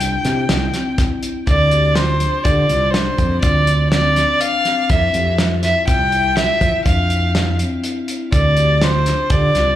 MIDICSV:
0, 0, Header, 1, 5, 480
1, 0, Start_track
1, 0, Key_signature, -1, "minor"
1, 0, Tempo, 489796
1, 1444, Time_signature, 7, 2, 24, 8
1, 9562, End_track
2, 0, Start_track
2, 0, Title_t, "Violin"
2, 0, Program_c, 0, 40
2, 0, Note_on_c, 0, 79, 92
2, 925, Note_off_c, 0, 79, 0
2, 1450, Note_on_c, 0, 74, 84
2, 1910, Note_on_c, 0, 72, 77
2, 1924, Note_off_c, 0, 74, 0
2, 2384, Note_on_c, 0, 74, 70
2, 2399, Note_off_c, 0, 72, 0
2, 2855, Note_on_c, 0, 72, 72
2, 2869, Note_off_c, 0, 74, 0
2, 3339, Note_off_c, 0, 72, 0
2, 3345, Note_on_c, 0, 74, 78
2, 3800, Note_off_c, 0, 74, 0
2, 3830, Note_on_c, 0, 74, 82
2, 4316, Note_on_c, 0, 77, 96
2, 4331, Note_off_c, 0, 74, 0
2, 4807, Note_on_c, 0, 76, 83
2, 4822, Note_off_c, 0, 77, 0
2, 5286, Note_off_c, 0, 76, 0
2, 5522, Note_on_c, 0, 76, 86
2, 5746, Note_off_c, 0, 76, 0
2, 5760, Note_on_c, 0, 79, 86
2, 6232, Note_on_c, 0, 76, 91
2, 6247, Note_off_c, 0, 79, 0
2, 6707, Note_off_c, 0, 76, 0
2, 6713, Note_on_c, 0, 77, 77
2, 7399, Note_off_c, 0, 77, 0
2, 8170, Note_on_c, 0, 74, 79
2, 8656, Note_on_c, 0, 72, 75
2, 8671, Note_off_c, 0, 74, 0
2, 9129, Note_on_c, 0, 74, 76
2, 9144, Note_off_c, 0, 72, 0
2, 9562, Note_off_c, 0, 74, 0
2, 9562, End_track
3, 0, Start_track
3, 0, Title_t, "Marimba"
3, 0, Program_c, 1, 12
3, 8, Note_on_c, 1, 62, 76
3, 208, Note_off_c, 1, 62, 0
3, 250, Note_on_c, 1, 64, 63
3, 448, Note_off_c, 1, 64, 0
3, 489, Note_on_c, 1, 64, 77
3, 688, Note_off_c, 1, 64, 0
3, 724, Note_on_c, 1, 60, 75
3, 925, Note_off_c, 1, 60, 0
3, 964, Note_on_c, 1, 64, 70
3, 1165, Note_off_c, 1, 64, 0
3, 1206, Note_on_c, 1, 64, 69
3, 1406, Note_off_c, 1, 64, 0
3, 1445, Note_on_c, 1, 69, 62
3, 1645, Note_off_c, 1, 69, 0
3, 1681, Note_on_c, 1, 67, 70
3, 1883, Note_off_c, 1, 67, 0
3, 1923, Note_on_c, 1, 65, 79
3, 2124, Note_off_c, 1, 65, 0
3, 2163, Note_on_c, 1, 62, 65
3, 2364, Note_off_c, 1, 62, 0
3, 2405, Note_on_c, 1, 67, 75
3, 2605, Note_off_c, 1, 67, 0
3, 2647, Note_on_c, 1, 65, 78
3, 2846, Note_off_c, 1, 65, 0
3, 2885, Note_on_c, 1, 62, 74
3, 3085, Note_off_c, 1, 62, 0
3, 3120, Note_on_c, 1, 60, 66
3, 3322, Note_off_c, 1, 60, 0
3, 3362, Note_on_c, 1, 65, 71
3, 3564, Note_off_c, 1, 65, 0
3, 3603, Note_on_c, 1, 62, 63
3, 3804, Note_off_c, 1, 62, 0
3, 3843, Note_on_c, 1, 60, 70
3, 4044, Note_off_c, 1, 60, 0
3, 4086, Note_on_c, 1, 62, 60
3, 4286, Note_off_c, 1, 62, 0
3, 4325, Note_on_c, 1, 62, 61
3, 4525, Note_off_c, 1, 62, 0
3, 4563, Note_on_c, 1, 60, 72
3, 4764, Note_off_c, 1, 60, 0
3, 4805, Note_on_c, 1, 64, 68
3, 5005, Note_off_c, 1, 64, 0
3, 5044, Note_on_c, 1, 67, 66
3, 5244, Note_off_c, 1, 67, 0
3, 5288, Note_on_c, 1, 65, 83
3, 5487, Note_off_c, 1, 65, 0
3, 5527, Note_on_c, 1, 64, 65
3, 5727, Note_off_c, 1, 64, 0
3, 5765, Note_on_c, 1, 65, 77
3, 5965, Note_off_c, 1, 65, 0
3, 6005, Note_on_c, 1, 64, 73
3, 6205, Note_off_c, 1, 64, 0
3, 6246, Note_on_c, 1, 65, 87
3, 6446, Note_off_c, 1, 65, 0
3, 6483, Note_on_c, 1, 64, 70
3, 6684, Note_off_c, 1, 64, 0
3, 6723, Note_on_c, 1, 62, 84
3, 6924, Note_off_c, 1, 62, 0
3, 6961, Note_on_c, 1, 64, 61
3, 7163, Note_off_c, 1, 64, 0
3, 7199, Note_on_c, 1, 64, 77
3, 7402, Note_off_c, 1, 64, 0
3, 7440, Note_on_c, 1, 60, 75
3, 7642, Note_off_c, 1, 60, 0
3, 7677, Note_on_c, 1, 64, 67
3, 7880, Note_off_c, 1, 64, 0
3, 7922, Note_on_c, 1, 64, 78
3, 8123, Note_off_c, 1, 64, 0
3, 8159, Note_on_c, 1, 69, 69
3, 8361, Note_off_c, 1, 69, 0
3, 8401, Note_on_c, 1, 67, 64
3, 8602, Note_off_c, 1, 67, 0
3, 8645, Note_on_c, 1, 65, 81
3, 8844, Note_off_c, 1, 65, 0
3, 8882, Note_on_c, 1, 62, 67
3, 9083, Note_off_c, 1, 62, 0
3, 9126, Note_on_c, 1, 67, 80
3, 9325, Note_off_c, 1, 67, 0
3, 9365, Note_on_c, 1, 65, 76
3, 9562, Note_off_c, 1, 65, 0
3, 9562, End_track
4, 0, Start_track
4, 0, Title_t, "Fretless electric bass"
4, 0, Program_c, 2, 35
4, 0, Note_on_c, 2, 36, 88
4, 143, Note_off_c, 2, 36, 0
4, 244, Note_on_c, 2, 48, 88
4, 434, Note_off_c, 2, 48, 0
4, 482, Note_on_c, 2, 36, 84
4, 672, Note_off_c, 2, 36, 0
4, 1444, Note_on_c, 2, 38, 81
4, 2201, Note_off_c, 2, 38, 0
4, 2404, Note_on_c, 2, 50, 82
4, 2593, Note_off_c, 2, 50, 0
4, 2642, Note_on_c, 2, 36, 77
4, 3022, Note_off_c, 2, 36, 0
4, 3120, Note_on_c, 2, 41, 87
4, 3311, Note_off_c, 2, 41, 0
4, 3363, Note_on_c, 2, 38, 74
4, 4121, Note_off_c, 2, 38, 0
4, 4800, Note_on_c, 2, 41, 95
4, 4991, Note_off_c, 2, 41, 0
4, 5045, Note_on_c, 2, 41, 78
4, 5613, Note_off_c, 2, 41, 0
4, 5760, Note_on_c, 2, 36, 85
4, 6330, Note_off_c, 2, 36, 0
4, 6478, Note_on_c, 2, 53, 101
4, 6575, Note_off_c, 2, 53, 0
4, 6719, Note_on_c, 2, 41, 76
4, 7478, Note_off_c, 2, 41, 0
4, 8157, Note_on_c, 2, 38, 80
4, 8917, Note_off_c, 2, 38, 0
4, 9117, Note_on_c, 2, 50, 79
4, 9308, Note_off_c, 2, 50, 0
4, 9357, Note_on_c, 2, 36, 81
4, 9562, Note_off_c, 2, 36, 0
4, 9562, End_track
5, 0, Start_track
5, 0, Title_t, "Drums"
5, 5, Note_on_c, 9, 42, 77
5, 103, Note_off_c, 9, 42, 0
5, 241, Note_on_c, 9, 38, 32
5, 241, Note_on_c, 9, 42, 58
5, 339, Note_off_c, 9, 38, 0
5, 339, Note_off_c, 9, 42, 0
5, 480, Note_on_c, 9, 38, 99
5, 480, Note_on_c, 9, 42, 78
5, 578, Note_off_c, 9, 38, 0
5, 578, Note_off_c, 9, 42, 0
5, 721, Note_on_c, 9, 38, 34
5, 721, Note_on_c, 9, 42, 58
5, 819, Note_off_c, 9, 38, 0
5, 819, Note_off_c, 9, 42, 0
5, 962, Note_on_c, 9, 38, 29
5, 962, Note_on_c, 9, 42, 69
5, 963, Note_on_c, 9, 36, 88
5, 1060, Note_off_c, 9, 38, 0
5, 1060, Note_off_c, 9, 42, 0
5, 1061, Note_off_c, 9, 36, 0
5, 1202, Note_on_c, 9, 42, 56
5, 1300, Note_off_c, 9, 42, 0
5, 1442, Note_on_c, 9, 42, 63
5, 1443, Note_on_c, 9, 36, 85
5, 1540, Note_off_c, 9, 42, 0
5, 1541, Note_off_c, 9, 36, 0
5, 1680, Note_on_c, 9, 42, 48
5, 1778, Note_off_c, 9, 42, 0
5, 1916, Note_on_c, 9, 38, 87
5, 1916, Note_on_c, 9, 42, 70
5, 2014, Note_off_c, 9, 38, 0
5, 2014, Note_off_c, 9, 42, 0
5, 2158, Note_on_c, 9, 42, 55
5, 2256, Note_off_c, 9, 42, 0
5, 2399, Note_on_c, 9, 42, 73
5, 2402, Note_on_c, 9, 36, 94
5, 2497, Note_off_c, 9, 42, 0
5, 2500, Note_off_c, 9, 36, 0
5, 2640, Note_on_c, 9, 42, 56
5, 2738, Note_off_c, 9, 42, 0
5, 2881, Note_on_c, 9, 38, 95
5, 2881, Note_on_c, 9, 42, 72
5, 2979, Note_off_c, 9, 38, 0
5, 2979, Note_off_c, 9, 42, 0
5, 3120, Note_on_c, 9, 42, 53
5, 3122, Note_on_c, 9, 36, 67
5, 3218, Note_off_c, 9, 42, 0
5, 3220, Note_off_c, 9, 36, 0
5, 3356, Note_on_c, 9, 42, 83
5, 3361, Note_on_c, 9, 36, 99
5, 3454, Note_off_c, 9, 42, 0
5, 3459, Note_off_c, 9, 36, 0
5, 3599, Note_on_c, 9, 42, 55
5, 3697, Note_off_c, 9, 42, 0
5, 3838, Note_on_c, 9, 38, 97
5, 3838, Note_on_c, 9, 42, 77
5, 3936, Note_off_c, 9, 38, 0
5, 3936, Note_off_c, 9, 42, 0
5, 4080, Note_on_c, 9, 38, 30
5, 4080, Note_on_c, 9, 42, 60
5, 4178, Note_off_c, 9, 38, 0
5, 4178, Note_off_c, 9, 42, 0
5, 4318, Note_on_c, 9, 42, 76
5, 4416, Note_off_c, 9, 42, 0
5, 4558, Note_on_c, 9, 38, 30
5, 4558, Note_on_c, 9, 42, 55
5, 4656, Note_off_c, 9, 38, 0
5, 4656, Note_off_c, 9, 42, 0
5, 4797, Note_on_c, 9, 42, 68
5, 4800, Note_on_c, 9, 36, 89
5, 4895, Note_off_c, 9, 42, 0
5, 4898, Note_off_c, 9, 36, 0
5, 5036, Note_on_c, 9, 42, 50
5, 5134, Note_off_c, 9, 42, 0
5, 5277, Note_on_c, 9, 38, 92
5, 5277, Note_on_c, 9, 42, 63
5, 5375, Note_off_c, 9, 38, 0
5, 5375, Note_off_c, 9, 42, 0
5, 5516, Note_on_c, 9, 38, 35
5, 5516, Note_on_c, 9, 42, 58
5, 5614, Note_off_c, 9, 38, 0
5, 5614, Note_off_c, 9, 42, 0
5, 5758, Note_on_c, 9, 42, 76
5, 5760, Note_on_c, 9, 36, 91
5, 5856, Note_off_c, 9, 42, 0
5, 5858, Note_off_c, 9, 36, 0
5, 6000, Note_on_c, 9, 42, 48
5, 6098, Note_off_c, 9, 42, 0
5, 6241, Note_on_c, 9, 38, 88
5, 6241, Note_on_c, 9, 42, 65
5, 6339, Note_off_c, 9, 38, 0
5, 6339, Note_off_c, 9, 42, 0
5, 6479, Note_on_c, 9, 42, 51
5, 6480, Note_on_c, 9, 36, 67
5, 6577, Note_off_c, 9, 42, 0
5, 6578, Note_off_c, 9, 36, 0
5, 6720, Note_on_c, 9, 36, 99
5, 6720, Note_on_c, 9, 42, 74
5, 6818, Note_off_c, 9, 36, 0
5, 6818, Note_off_c, 9, 42, 0
5, 6958, Note_on_c, 9, 42, 55
5, 7056, Note_off_c, 9, 42, 0
5, 7202, Note_on_c, 9, 38, 94
5, 7202, Note_on_c, 9, 42, 72
5, 7300, Note_off_c, 9, 38, 0
5, 7300, Note_off_c, 9, 42, 0
5, 7440, Note_on_c, 9, 42, 61
5, 7538, Note_off_c, 9, 42, 0
5, 7679, Note_on_c, 9, 42, 63
5, 7777, Note_off_c, 9, 42, 0
5, 7919, Note_on_c, 9, 42, 60
5, 8017, Note_off_c, 9, 42, 0
5, 8158, Note_on_c, 9, 36, 95
5, 8158, Note_on_c, 9, 42, 83
5, 8256, Note_off_c, 9, 36, 0
5, 8256, Note_off_c, 9, 42, 0
5, 8394, Note_on_c, 9, 42, 47
5, 8492, Note_off_c, 9, 42, 0
5, 8639, Note_on_c, 9, 38, 95
5, 8639, Note_on_c, 9, 42, 64
5, 8737, Note_off_c, 9, 38, 0
5, 8737, Note_off_c, 9, 42, 0
5, 8879, Note_on_c, 9, 38, 30
5, 8879, Note_on_c, 9, 42, 60
5, 8977, Note_off_c, 9, 38, 0
5, 8977, Note_off_c, 9, 42, 0
5, 9112, Note_on_c, 9, 42, 72
5, 9117, Note_on_c, 9, 36, 100
5, 9210, Note_off_c, 9, 42, 0
5, 9215, Note_off_c, 9, 36, 0
5, 9359, Note_on_c, 9, 38, 33
5, 9359, Note_on_c, 9, 42, 58
5, 9457, Note_off_c, 9, 38, 0
5, 9457, Note_off_c, 9, 42, 0
5, 9562, End_track
0, 0, End_of_file